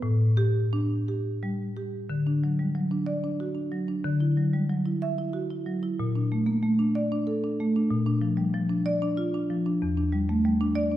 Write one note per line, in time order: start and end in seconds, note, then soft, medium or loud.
0.02 2.06 A2 medium
0.37 0.93 G4 medium
0.73 1.28 D4 medium
1.08 1.63 G4 medium
1.43 1.97 G3 medium
1.77 2.10 G4 medium
2.10 4.01 D3 medium
2.27 2.53 D4 medium
2.44 2.69 F#3 soft
2.59 2.75 G3 soft
2.75 3.01 F#3 medium
2.91 3.17 D4 medium
3.06 3.33 D5 medium
3.24 3.50 D4 medium
3.40 3.66 F#4 medium
3.55 3.82 D4 soft
3.72 3.98 F#3 medium
3.88 4.05 D4 medium
4.04 5.95 D3 medium
4.20 4.47 E4 medium
4.37 4.63 F#3 medium
4.53 4.70 G3 medium
4.70 4.96 F#3 medium
4.86 5.12 E4 medium
5.02 5.28 E5 medium
5.18 5.44 E4 medium
5.33 5.60 F#4 medium
5.51 5.77 E4 medium
5.66 5.92 F#3 medium
5.83 5.99 E4 medium
6.00 7.87 A#2 medium
6.16 6.41 D4 medium
6.32 6.57 A3 medium
6.46 6.63 A#3 medium
6.63 6.89 A3 medium
6.79 7.05 D4 medium
6.95 7.21 D5 medium
7.12 7.37 D4 medium
7.27 7.53 A4 medium
7.44 7.69 D4 medium
7.60 7.85 A3 medium
7.76 7.91 D4 medium
7.91 9.78 A#2 medium
8.06 8.32 D4 medium
8.22 8.47 F3 medium
8.37 8.53 G3 medium
8.54 8.79 F3 medium
8.70 8.95 D4 medium
8.86 9.11 D5 medium
9.02 9.27 D4 medium
9.17 9.43 F4 medium
9.34 9.60 D4 medium
9.50 9.76 F3 medium
9.66 9.82 D4 medium
9.82 10.97 E2 medium
9.97 10.23 D4 medium
10.12 10.39 G3 medium
10.29 10.46 A3 medium
10.45 10.71 G3 medium
10.61 10.87 D4 medium
10.75 10.97 D5 medium
10.92 10.97 D4 medium